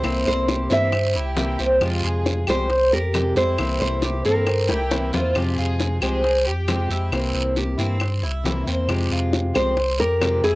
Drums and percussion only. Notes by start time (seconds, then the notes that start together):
0.04 high bongo, long guiro, claves
0.48 high bongo, short guiro
0.70 high bongo, short guiro
0.92 high bongo, long guiro, claves
1.15 high bongo
1.37 high bongo, low bongo, short guiro
1.59 high bongo, short guiro
1.81 high bongo, long guiro, claves
2.26 high bongo, short guiro
2.47 short guiro, claves
2.70 high bongo, long guiro
3.14 high bongo, low bongo, short guiro, claves
3.36 short guiro
3.58 high bongo, long guiro, claves
4.02 high bongo, short guiro
4.25 high bongo, short guiro
4.47 high bongo, long guiro, claves
4.69 high bongo
4.91 high bongo, short guiro
5.13 low bongo, short guiro
5.35 high bongo, long guiro, claves
5.80 high bongo, short guiro
6.02 short guiro, claves
6.24 high bongo, long guiro
6.68 high bongo, low bongo, short guiro, claves
6.91 short guiro
7.12 high bongo, long guiro, claves
7.56 high bongo, short guiro
7.79 high bongo, short guiro
8.00 high bongo, long guiro, claves
8.23 high bongo
8.45 high bongo, low bongo, short guiro
8.68 high bongo, short guiro
8.89 high bongo, long guiro, claves
9.33 high bongo, short guiro
9.55 short guiro, claves
9.77 high bongo, long guiro
10.22 high bongo, low bongo, short guiro, claves
10.44 short guiro